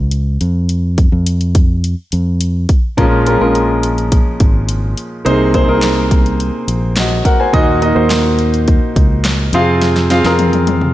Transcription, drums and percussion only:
0.11 closed hi-hat medium
0.41 closed hi-hat medium
0.69 closed hi-hat medium
0.98 kick medium
0.98 closed hi-hat medium
1.26 closed hi-hat medium
1.41 closed hi-hat soft
1.55 kick medium
1.55 closed hi-hat medium
1.84 closed hi-hat medium
2.12 closed hi-hat medium
2.41 closed hi-hat medium
2.69 kick medium
2.69 closed hi-hat medium
2.98 kick medium
2.98 closed hi-hat medium
3.27 closed hi-hat medium
3.55 closed hi-hat medium
3.83 closed hi-hat medium
3.98 closed hi-hat soft
4.12 kick medium
4.12 closed hi-hat medium
4.40 kick medium
4.40 closed hi-hat medium
4.69 closed hi-hat medium
4.97 closed hi-hat medium
5.26 closed hi-hat medium
5.54 kick medium
5.54 closed hi-hat medium
5.82 snare medium
5.82 clap medium
5.82 closed hi-hat medium
6.11 kick medium
6.11 closed hi-hat medium
6.26 closed hi-hat soft
6.40 closed hi-hat medium
6.68 closed hi-hat medium
6.96 snare medium
6.96 clap medium
6.96 closed hi-hat medium
7.25 kick medium
7.25 closed hi-hat medium
7.54 kick loud
7.54 closed hi-hat medium
7.82 closed hi-hat medium
8.10 snare medium
8.10 clap medium
8.10 closed hi-hat medium
8.39 closed hi-hat medium
8.54 closed hi-hat soft
8.68 kick medium
8.68 closed hi-hat medium
8.96 kick medium
8.96 closed hi-hat medium
9.25 snare medium
9.25 clap medium
9.25 closed hi-hat medium
9.53 closed hi-hat medium
9.82 snare soft
9.82 closed hi-hat medium
9.96 snare soft
10.10 snare medium
10.10 closed hi-hat medium
10.24 snare soft
10.39 closed hi-hat medium
10.39 high tom medium
10.53 closed hi-hat soft
10.53 high tom medium
10.67 closed hi-hat medium
10.67 high tom medium
10.81 mid tom soft

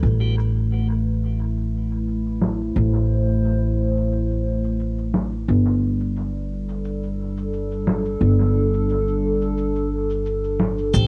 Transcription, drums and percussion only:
0.03 cabasa soft
0.55 cabasa soft
0.71 cabasa soft
1.24 cabasa soft
1.39 cabasa soft
1.57 cabasa soft
1.91 cabasa soft
2.08 cabasa soft
2.26 cabasa soft
2.41 low conga medium
2.60 cabasa soft
2.76 cabasa soft
3.28 cabasa soft
3.44 cabasa soft
3.96 cabasa soft
4.12 cabasa soft
4.30 cabasa soft
4.64 cabasa soft
4.80 cabasa soft
4.98 cabasa soft
5.14 low conga medium
5.32 cabasa soft
5.48 cabasa soft
6.01 cabasa soft
6.16 cabasa soft
6.69 cabasa soft
6.85 cabasa soft
7.03 cabasa soft
7.37 cabasa soft
7.53 cabasa soft
7.71 cabasa soft
7.87 low conga medium
8.05 cabasa soft
8.21 cabasa soft
8.74 cabasa soft
8.89 cabasa soft
9.08 cabasa soft
9.42 cabasa soft
9.58 cabasa soft
9.76 cabasa soft
10.10 cabasa soft
10.26 cabasa soft
10.44 cabasa soft
10.60 low conga medium
10.78 cabasa soft
10.94 kick loud
10.94 cabasa medium

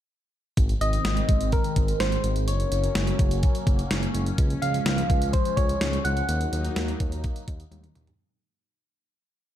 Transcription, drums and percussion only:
0.57 kick loud
0.57 closed hi-hat medium
0.69 closed hi-hat soft
0.81 closed hi-hat medium
0.93 closed hi-hat soft
1.05 snare loud
1.05 closed hi-hat medium
1.17 closed hi-hat medium
1.29 kick medium
1.29 closed hi-hat medium
1.41 closed hi-hat medium
1.52 kick medium
1.52 closed hi-hat medium
1.64 closed hi-hat medium
1.76 kick medium
1.76 closed hi-hat medium
1.88 closed hi-hat medium
2.00 snare loud
2.00 closed hi-hat medium
2.12 closed hi-hat soft
2.24 closed hi-hat medium
2.36 closed hi-hat soft
2.48 closed hi-hat medium
2.60 closed hi-hat soft
2.72 closed hi-hat medium
2.84 closed hi-hat soft
2.95 snare loud
2.95 closed hi-hat medium
3.07 closed hi-hat medium
3.19 kick medium
3.19 closed hi-hat medium
3.31 closed hi-hat medium
3.43 kick medium
3.43 closed hi-hat medium
3.55 closed hi-hat medium
3.67 kick medium
3.67 closed hi-hat medium
3.79 closed hi-hat medium
3.91 snare loud
3.91 closed hi-hat medium
4.03 closed hi-hat soft
4.15 closed hi-hat medium
4.26 closed hi-hat soft
4.38 kick loud
4.38 closed hi-hat medium
4.50 closed hi-hat soft
4.62 closed hi-hat medium
4.74 closed hi-hat soft
4.86 snare loud
4.86 closed hi-hat medium
4.98 closed hi-hat medium
5.10 kick medium
5.10 closed hi-hat medium
5.22 closed hi-hat medium
5.33 kick medium
5.33 closed hi-hat medium
5.45 closed hi-hat medium
5.57 kick medium
5.57 closed hi-hat medium
5.69 closed hi-hat medium
5.81 snare loud
5.81 closed hi-hat medium
5.93 closed hi-hat soft
6.05 closed hi-hat medium
6.17 closed hi-hat soft
6.29 closed hi-hat medium
6.41 closed hi-hat soft
6.53 closed hi-hat medium
6.65 closed hi-hat soft
6.76 snare loud
6.76 closed hi-hat medium
6.88 closed hi-hat medium
7.00 kick loud
7.00 closed hi-hat medium
7.12 closed hi-hat medium
7.24 kick medium
7.24 closed hi-hat medium
7.36 closed hi-hat medium
7.48 kick medium
7.48 closed hi-hat medium
7.60 closed hi-hat medium
7.72 closed hi-hat medium
7.72 high tom medium
7.84 closed hi-hat soft
7.84 mid tom medium
7.95 closed hi-hat medium
7.95 mid tom medium
8.07 closed hi-hat soft
8.07 floor tom medium

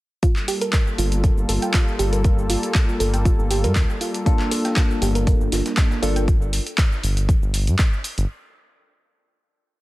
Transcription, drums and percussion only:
0.23 kick loud
0.23 closed hi-hat medium
0.23 shaker soft
0.36 clap soft
0.36 shaker soft
0.48 open hi-hat loud
0.48 shaker medium
0.61 closed hi-hat medium
0.61 shaker soft
0.73 kick loud
0.73 clap loud
0.73 closed hi-hat medium
0.73 shaker soft
0.87 shaker soft
0.98 open hi-hat medium
0.98 shaker medium
1.12 closed hi-hat medium
1.12 shaker soft
1.24 kick loud
1.24 closed hi-hat medium
1.24 shaker soft
1.38 shaker soft
1.49 open hi-hat loud
1.49 shaker medium
1.62 closed hi-hat medium
1.62 shaker soft
1.74 kick loud
1.74 clap loud
1.74 closed hi-hat medium
1.74 shaker soft
1.88 shaker soft
1.99 open hi-hat medium
1.99 shaker medium
2.13 closed hi-hat medium
2.13 shaker soft
2.24 kick loud
2.24 closed hi-hat medium
2.24 shaker soft
2.38 shaker soft
2.50 open hi-hat loud
2.50 shaker medium
2.63 closed hi-hat medium
2.63 shaker soft
2.75 kick loud
2.75 clap loud
2.75 closed hi-hat medium
2.75 shaker soft
2.89 shaker soft
3.00 open hi-hat loud
3.00 shaker medium
3.14 closed hi-hat medium
3.14 shaker soft
3.25 kick loud
3.25 closed hi-hat medium
3.25 shaker soft
3.39 shaker soft
3.51 open hi-hat loud
3.51 shaker medium
3.64 closed hi-hat medium
3.64 shaker soft
3.75 kick loud
3.75 clap loud
3.75 closed hi-hat medium
3.75 shaker soft
3.90 shaker soft
4.01 open hi-hat medium
4.01 shaker medium
4.14 closed hi-hat medium
4.14 shaker soft
4.26 kick loud
4.26 closed hi-hat soft
4.26 closed hi-hat medium
4.26 shaker soft
4.39 clap soft
4.39 shaker soft
4.51 closed hi-hat medium
4.51 open hi-hat loud
4.51 shaker medium
4.65 snare soft
4.65 closed hi-hat medium
4.65 shaker soft
4.76 kick loud
4.76 snare loud
4.76 clap loud
4.76 closed hi-hat medium
4.76 shaker soft
4.91 shaker soft
5.02 closed hi-hat medium
5.02 open hi-hat medium
5.02 shaker medium
5.15 closed hi-hat medium
5.15 shaker soft
5.27 kick loud
5.27 closed hi-hat soft
5.27 closed hi-hat medium
5.27 shaker soft
5.41 shaker soft
5.52 snare soft
5.52 closed hi-hat medium
5.52 open hi-hat loud
5.52 shaker medium
5.66 snare soft
5.66 closed hi-hat medium
5.66 shaker soft
5.77 kick loud
5.77 snare loud
5.77 clap loud
5.77 closed hi-hat medium
5.77 shaker soft
5.91 snare medium
5.91 shaker soft
6.03 closed hi-hat medium
6.03 open hi-hat loud
6.03 shaker medium
6.16 closed hi-hat medium
6.16 shaker soft
6.28 kick loud
6.28 closed hi-hat soft
6.28 shaker soft
6.42 shaker soft
6.53 open hi-hat loud
6.53 shaker medium
6.67 closed hi-hat medium
6.67 shaker soft
6.78 kick loud
6.78 clap loud
6.78 closed hi-hat medium
6.78 shaker soft
6.92 shaker soft
7.04 open hi-hat loud
7.04 shaker medium
7.17 closed hi-hat medium
7.17 shaker soft
7.29 kick loud
7.29 closed hi-hat soft
7.29 shaker soft
7.43 shaker soft
7.54 open hi-hat loud
7.54 shaker medium
7.67 closed hi-hat medium
7.67 shaker soft
7.79 kick loud
7.79 clap loud
7.79 closed hi-hat soft
7.79 shaker soft
7.93 shaker soft
8.04 open hi-hat loud
8.04 shaker medium
8.18 closed hi-hat medium
8.18 shaker soft

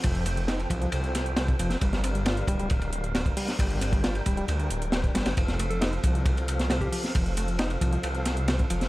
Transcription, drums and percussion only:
0.03 kick loud
0.03 closed hi-hat soft
0.03 ride medium
0.15 closed hi-hat soft
0.26 closed hi-hat medium
0.26 ride medium
0.37 closed hi-hat soft
0.48 snare loud
0.48 closed hi-hat soft
0.48 ride medium
0.60 closed hi-hat soft
0.60 ride soft
0.70 kick medium
0.70 closed hi-hat medium
0.70 ride medium
0.82 closed hi-hat soft
0.92 closed hi-hat soft
0.92 ride medium
1.04 closed hi-hat soft
1.15 snare soft
1.15 closed hi-hat medium
1.15 ride medium
1.26 closed hi-hat soft
1.37 snare loud
1.37 closed hi-hat soft
1.37 ride medium
1.48 kick medium
1.48 closed hi-hat soft
1.59 closed hi-hat medium
1.59 ride medium
1.70 snare soft
1.70 closed hi-hat soft
1.81 kick loud
1.81 closed hi-hat soft
1.81 ride medium
1.93 snare medium
1.93 closed hi-hat soft
2.04 closed hi-hat medium
2.04 ride medium
2.15 closed hi-hat soft
2.26 snare loud
2.26 closed hi-hat soft
2.26 ride medium
2.37 closed hi-hat soft
2.47 kick medium
2.47 closed hi-hat medium
2.47 ride medium
2.59 closed hi-hat soft
2.70 kick loud
2.70 closed hi-hat soft
2.70 ride medium
2.82 closed hi-hat soft
2.82 ride soft
2.93 closed hi-hat medium
3.04 closed hi-hat soft
3.15 snare loud
3.15 closed hi-hat soft
3.15 ride medium
3.26 kick medium
3.26 closed hi-hat soft
3.37 closed hi-hat medium
3.37 open hi-hat medium
3.48 snare soft
3.48 closed hi-hat soft
3.59 kick loud
3.59 closed hi-hat soft
3.59 ride medium
3.70 closed hi-hat soft
3.81 closed hi-hat medium
3.81 ride medium
3.93 kick medium
3.93 closed hi-hat soft
4.04 snare loud
4.04 closed hi-hat soft
4.04 ride medium
4.15 closed hi-hat soft
4.15 ride soft
4.26 kick medium
4.26 closed hi-hat medium
4.26 ride medium
4.37 closed hi-hat soft
4.48 closed hi-hat soft
4.48 ride medium
4.60 closed hi-hat soft
4.70 closed hi-hat medium
4.82 closed hi-hat soft
4.92 snare loud
4.92 closed hi-hat soft
4.92 ride medium
5.04 kick medium
5.04 closed hi-hat soft
5.15 snare medium
5.15 closed hi-hat medium
5.15 ride medium
5.26 snare loud
5.26 closed hi-hat soft
5.26 ride medium
5.37 kick loud
5.37 closed hi-hat soft
5.37 ride medium
5.48 snare soft
5.48 closed hi-hat soft
5.59 closed hi-hat medium
5.59 ride medium
5.71 closed hi-hat soft
5.82 snare loud
5.82 closed hi-hat soft
5.82 ride medium
5.93 closed hi-hat soft
6.03 kick medium
6.03 closed hi-hat medium
6.03 ride medium
6.15 closed hi-hat soft
6.25 kick loud
6.25 closed hi-hat soft
6.25 ride medium
6.37 closed hi-hat soft
6.37 ride soft
6.48 closed hi-hat medium
6.48 ride medium
6.59 snare medium
6.59 closed hi-hat soft
6.70 snare loud
6.70 closed hi-hat soft
6.70 ride medium
6.81 kick medium
6.81 closed hi-hat soft
6.93 closed hi-hat medium
6.93 open hi-hat medium
7.04 snare soft
7.04 closed hi-hat soft
7.15 kick loud
7.15 closed hi-hat soft
7.15 ride medium
7.26 closed hi-hat soft
7.37 closed hi-hat medium
7.37 ride medium
7.48 closed hi-hat soft
7.59 snare loud
7.59 closed hi-hat soft
7.59 ride medium
7.70 closed hi-hat soft
7.70 ride soft
7.81 kick medium
7.81 closed hi-hat medium
7.81 ride medium
7.93 closed hi-hat soft
8.03 closed hi-hat soft
8.03 ride medium
8.15 closed hi-hat soft
8.25 snare soft
8.25 closed hi-hat medium
8.25 ride medium
8.37 closed hi-hat soft
8.48 snare loud
8.48 closed hi-hat soft
8.48 ride medium
8.59 kick medium
8.59 closed hi-hat soft
8.70 closed hi-hat medium
8.70 ride medium
8.81 snare soft
8.81 closed hi-hat soft

